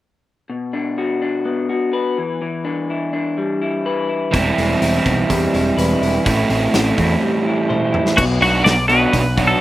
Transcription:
0.50 1.70 B2 medium
0.73 1.21 D4 medium
0.98 1.68 F#4 medium
1.22 2.18 D4 medium
1.45 3.37 B3 medium
1.69 2.18 F#4 medium
1.93 3.85 B4 medium
2.18 2.41 E3 medium
2.42 4.33 E3 medium
2.65 3.12 D4 medium
2.90 3.61 E4 medium
3.13 4.33 D4 medium
3.38 5.30 G3 medium
3.62 4.08 E4 medium
3.86 4.34 B4 medium
4.09 4.81 E4 medium
4.31 4.51 E1 medium
4.31 6.23 E3 medium
4.31 5.53 E3 medium
4.31 6.23 G3 medium
4.31 6.23 C4 medium
4.31 6.24 E4 medium
4.31 kick loud
4.31 open hi-hat medium
4.57 4.75 E1 medium
4.57 5.05 C4 medium
4.57 open hi-hat soft
4.81 4.98 E1 medium
4.81 5.52 E4 medium
4.81 open hi-hat medium
5.06 5.23 B1 medium
5.06 6.26 C4 medium
5.06 kick medium
5.06 open hi-hat soft
5.30 5.46 E2 medium
5.30 6.26 G3 medium
5.30 kick medium
5.30 open hi-hat medium
5.53 5.71 E1 medium
5.53 6.00 E4 medium
5.53 open hi-hat medium
5.77 5.94 E1 medium
5.77 6.26 B4 medium
5.77 open hi-hat medium
6.01 6.18 E1 medium
6.01 6.26 E4 medium
6.01 open hi-hat soft
6.25 6.43 A1 medium
6.25 8.16 A2 medium
6.25 7.45 A2 medium
6.25 8.16 E3 medium
6.25 8.16 A3 medium
6.25 8.16 C4 medium
6.25 8.17 E4 medium
6.25 kick loud
6.25 open hi-hat medium
6.50 6.66 A1 medium
6.50 6.97 C4 medium
6.50 open hi-hat soft
6.74 6.91 A1 medium
6.74 7.46 E4 medium
6.74 snare loud
6.74 open hi-hat medium
6.98 7.15 E2 medium
6.98 8.18 C4 medium
6.98 kick medium
6.98 open hi-hat soft
7.22 8.17 G3 medium
7.47 7.91 E4 medium
7.69 8.18 C5 medium
7.69 high tom soft
7.93 8.17 E4 medium
7.93 mid tom medium
8.06 snare medium
8.16 8.38 B1 medium
8.16 8.40 B2 medium
8.16 8.40 F#3 medium
8.16 8.40 B3 medium
8.16 8.24 F#4 medium
8.16 kick loud
8.16 crash medium
8.41 8.61 B1 medium
8.41 8.63 B2 medium
8.41 8.63 F#3 medium
8.41 8.73 F#3 medium
8.41 8.73 B3 medium
8.41 8.73 D4 medium
8.41 8.73 F#4 loud
8.41 8.64 F#4 medium
8.41 open hi-hat soft
8.64 9.05 B1 medium
8.64 8.87 B2 medium
8.64 8.87 F#3 medium
8.64 8.88 D5 medium
8.64 snare loud
8.64 open hi-hat medium
8.88 9.11 B2 medium
8.88 9.12 F#3 medium
8.88 9.21 F#3 medium
8.88 9.12 B3 medium
8.88 9.21 B3 medium
8.88 9.21 D4 medium
8.88 9.21 F#4 medium
8.88 9.47 B4 medium
8.88 open hi-hat soft
9.13 9.53 B1 medium
9.13 9.35 B2 medium
9.13 9.35 F#3 medium
9.13 kick medium
9.13 open hi-hat medium
9.37 9.60 B2 medium
9.37 9.60 F#3 medium
9.37 9.61 F#3 medium
9.37 9.60 B3 medium
9.37 9.61 B3 medium
9.37 9.61 D4 medium
9.37 9.61 F#4 medium
9.37 kick medium
9.37 open hi-hat medium
9.47 9.61 A4 medium

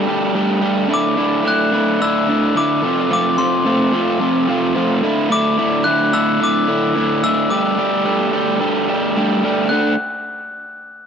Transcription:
0.07 0.34 G3 medium
0.07 0.35 A3 medium
0.07 0.35 D4 medium
0.07 0.35 G4 medium
0.35 0.61 G3 medium
0.35 0.62 A3 medium
0.35 0.62 D4 medium
0.35 0.62 G4 medium
0.62 0.88 G3 medium
0.62 0.89 A3 medium
0.62 0.89 D4 medium
0.62 0.89 G4 medium
0.89 1.16 D3 medium
0.89 1.17 A3 medium
0.89 1.18 D4 medium
0.89 1.17 E4 medium
0.94 1.49 D6 medium
1.18 1.42 D3 medium
1.18 1.44 A3 medium
1.18 1.44 D4 medium
1.18 1.44 E4 medium
1.44 1.71 D3 medium
1.44 1.73 A3 medium
1.44 1.73 D4 medium
1.44 1.72 E4 medium
1.44 2.04 F#6 medium
1.72 2.00 D3 medium
1.72 2.00 A3 medium
1.72 2.01 D4 medium
1.72 2.00 E4 medium
2.01 2.27 D3 medium
2.01 2.28 A3 medium
2.01 2.29 D4 loud
2.01 2.28 E4 loud
2.01 2.58 E6 medium
2.28 2.54 D3 medium
2.28 2.55 A3 medium
2.28 2.55 D4 medium
2.28 2.55 E4 medium
2.55 2.82 D3 medium
2.55 2.83 A3 medium
2.55 2.83 D4 medium
2.55 2.82 E4 medium
2.55 3.12 D6 medium
2.82 3.09 F2 loud
2.82 3.09 C3 loud
2.82 3.10 F3 medium
2.82 3.10 A3 medium
2.82 3.11 C4 loud
2.82 3.10 F4 loud
3.10 3.37 F2 medium
3.10 3.37 C3 medium
3.10 3.37 F3 medium
3.10 3.38 A3 medium
3.10 3.38 C4 medium
3.10 3.38 F4 loud
3.10 3.41 D6 loud
3.38 3.64 F2 medium
3.38 3.64 C3 medium
3.38 3.64 F3 medium
3.38 3.65 A3 medium
3.38 3.65 C4 medium
3.38 3.65 F4 medium
3.38 4.45 C6 medium
3.65 3.91 F2 medium
3.65 3.91 C3 medium
3.65 3.92 F3 medium
3.65 3.93 A3 medium
3.65 3.93 C4 medium
3.65 3.93 F4 medium
3.92 4.19 F2 medium
3.92 4.19 C3 medium
3.92 4.19 F3 medium
3.92 4.20 A3 medium
3.92 4.20 C4 medium
3.92 4.20 F4 medium
4.20 4.47 F2 loud
4.20 4.47 C3 loud
4.20 4.48 F3 medium
4.20 4.49 A3 loud
4.20 4.48 C4 loud
4.20 4.48 F4 loud
4.48 4.74 F2 medium
4.48 4.74 C3 medium
4.48 4.75 F3 medium
4.48 4.76 A3 medium
4.48 4.75 C4 medium
4.48 4.76 F4 medium
4.75 5.02 F2 medium
4.75 5.02 C3 medium
4.75 5.02 F3 medium
4.75 5.03 A3 medium
4.75 5.02 C4 loud
4.75 5.03 F4 medium
5.03 5.29 D3 medium
5.03 5.30 A3 loud
5.03 5.30 D4 loud
5.03 5.30 E4 loud
5.30 5.57 D3 medium
5.30 5.58 A3 medium
5.30 5.58 D4 medium
5.30 5.57 E4 medium
5.30 5.89 D6 loud
5.58 5.85 D3 medium
5.58 5.86 A3 medium
5.58 5.86 D4 medium
5.58 5.85 E4 medium
5.84 6.12 D3 medium
5.84 6.13 A3 medium
5.84 6.13 D4 medium
5.84 6.13 E4 medium
5.84 6.14 F#6 loud
6.13 6.39 D3 medium
6.13 6.40 A3 medium
6.13 6.41 D4 medium
6.13 6.40 E4 loud
6.13 6.39 E6 loud
6.40 6.67 D3 loud
6.40 6.68 A3 loud
6.40 6.68 D4 loud
6.40 6.68 E4 loud
6.40 7.21 D6 medium
6.68 6.94 D3 medium
6.68 6.96 A3 medium
6.68 6.96 D4 medium
6.68 6.96 E4 medium
6.95 7.23 D3 medium
6.95 7.23 A3 medium
6.95 7.24 D4 medium
6.95 7.23 E4 medium
7.23 7.50 D3 medium
7.23 7.50 A3 medium
7.23 7.51 D4 medium
7.23 7.50 E4 medium
7.23 7.52 E6 loud
7.50 7.78 G3 medium
7.50 7.78 A3 medium
7.50 7.78 D4 medium
7.50 7.79 G4 loud
7.50 9.12 D6 medium
7.79 8.04 G3 medium
7.79 8.05 A3 medium
7.79 8.04 D4 medium
7.79 8.05 G4 loud
8.05 8.32 G3 medium
8.05 8.32 A3 medium
8.05 8.32 D4 medium
8.05 8.32 G4 medium
8.33 8.59 G3 medium
8.33 8.59 A3 medium
8.33 8.59 D4 medium
8.33 8.60 G4 loud
8.60 8.87 G3 medium
8.60 8.88 A3 loud
8.60 8.88 D4 loud
8.60 8.89 G4 loud
8.88 9.15 G3 medium
8.88 9.16 A3 medium
8.88 9.16 D4 medium
8.88 9.17 G4 loud
9.17 9.43 G3 medium
9.17 9.43 A3 medium
9.17 9.43 D4 medium
9.17 9.44 G4 medium
9.44 9.70 G3 medium
9.44 9.70 A3 medium
9.44 9.70 D4 loud
9.44 9.70 G4 medium
9.69 9.93 D3 medium
9.69 9.93 A3 medium
9.69 9.94 D4 medium
9.69 9.94 F#4 medium
9.69 9.96 F#6 medium

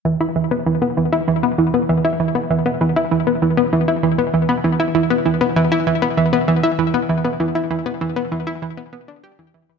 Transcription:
0.05 0.12 E3 medium
0.21 0.32 E4 medium
0.36 0.50 E3 medium
0.51 0.66 B3 medium
0.66 0.78 E3 medium
0.82 0.93 B3 medium
0.97 1.04 E3 medium
1.12 1.24 E4 medium
1.28 1.42 E3 medium
1.43 1.58 B3 medium
1.58 1.70 E3 medium
1.74 1.85 B3 medium
1.89 1.96 E3 medium
2.05 2.16 E4 medium
2.20 2.34 E3 medium
2.35 2.49 B3 medium
2.50 2.62 E3 medium
2.66 2.77 B3 medium
2.81 2.88 E3 medium
2.96 3.08 E4 medium
3.11 3.26 E3 medium
3.27 3.41 B3 medium
3.42 3.53 E3 medium
3.57 3.69 B3 medium
3.73 3.79 E3 medium
3.88 3.99 E4 medium
4.03 4.18 E3 medium
4.18 4.33 B3 medium
4.34 4.45 E3 medium
4.49 4.60 B3 medium
4.64 4.71 E3 medium
4.80 4.91 E4 medium
4.95 5.09 E3 medium
5.10 5.25 B3 medium
5.26 5.37 E3 medium
5.41 5.52 B3 medium
5.56 5.63 E3 medium
5.72 5.83 E4 medium
5.87 6.01 E3 medium
6.02 6.17 B3 medium
6.17 6.29 E3 medium
6.33 6.44 B3 medium
6.48 6.55 E3 medium
6.63 6.75 E4 medium
6.79 6.93 E3 medium
6.94 7.09 B3 medium
7.09 7.21 E3 medium
7.25 7.36 B3 medium
7.40 7.47 E3 medium
7.55 7.67 E4 medium
7.71 7.85 E3 medium
7.86 8.00 B3 medium
8.01 8.12 E3 medium
8.16 8.28 B3 medium
8.32 8.38 E3 medium
8.47 8.58 E4 medium
8.62 8.77 E3 medium
8.77 8.92 B3 medium
8.93 9.04 B3 medium
9.08 9.15 D4 medium
9.24 9.35 G4 medium
9.39 9.53 E3 medium
9.54 9.68 E3 medium
9.69 9.79 E3 medium

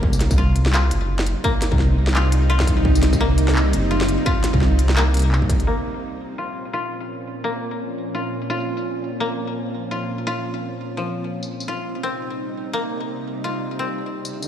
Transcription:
0.00 0.92 C2 loud
0.00 5.64 C3 medium
0.00 5.64 G3 medium
0.00 1.44 A#3 loud
0.00 5.64 C4 medium
0.00 5.64 D#4 medium
0.00 0.37 F4 loud
0.00 kick loud
0.13 tambourine soft
0.20 snare medium
0.20 closed hi-hat medium
0.31 kick loud
0.31 tambourine soft
0.38 0.73 F4 medium
0.56 closed hi-hat medium
0.66 snare medium
0.73 2.14 F4 loud
0.73 clap loud
0.91 1.35 F#1 medium
0.91 closed hi-hat medium
1.19 snare medium
1.26 closed hi-hat medium
1.44 3.20 A#3 loud
1.44 kick loud
1.62 snare medium
1.62 closed hi-hat medium
1.72 2.84 C2 loud
1.72 kick loud
1.79 snare soft
2.07 snare medium
2.15 2.49 F4 medium
2.15 clap loud
2.32 closed hi-hat medium
2.50 3.90 F4 loud
2.60 kick medium
2.60 snare medium
2.67 kick loud
2.67 closed hi-hat medium
2.85 3.75 C2 loud
2.85 kick loud
2.95 tambourine soft
3.03 snare medium
3.03 closed hi-hat medium
3.13 kick loud
3.13 tambourine soft
3.20 4.96 A#3 loud
3.38 closed hi-hat medium
3.48 snare medium
3.55 clap loud
3.73 4.18 F#1 medium
3.73 closed hi-hat medium
3.91 4.26 F4 medium
4.01 snare medium
4.08 closed hi-hat medium
4.26 6.38 F4 loud
4.26 kick loud
4.44 snare medium
4.44 closed hi-hat medium
4.54 5.66 C2 loud
4.54 kick loud
4.61 snare soft
4.79 closed hi-hat medium
4.89 snare medium
4.96 5.67 A#3 loud
4.96 clap loud
5.14 closed hi-hat medium
5.17 closed hi-hat medium
5.19 closed hi-hat medium
5.22 closed hi-hat soft
5.32 clap medium
5.42 kick medium
5.50 kick loud
5.50 closed hi-hat medium
5.60 closed hi-hat soft
5.66 11.28 A#2 medium
5.66 11.28 F3 medium
5.66 7.44 A#3 medium
5.66 14.48 C4 medium
5.66 11.28 C#4 medium
6.38 6.73 F4 medium
6.73 8.14 F4 loud
7.44 9.20 A#3 medium
8.15 8.49 F4 medium
8.50 9.91 F4 medium
8.60 tambourine soft
8.78 tambourine soft
9.20 11.99 A#3 medium
9.91 10.26 F4 medium
10.27 11.68 F4 medium
10.97 11.37 F3 medium
11.32 14.48 C3 medium
11.32 14.48 G3 medium
11.32 14.48 D#4 medium
11.43 tambourine soft
11.60 tambourine soft
11.68 13.44 F4 medium
12.03 13.79 C4 medium
12.73 14.48 A#3 medium
13.44 14.48 F4 medium
13.79 14.48 C4 medium
14.14 riser medium
14.25 tambourine soft
14.42 tambourine soft

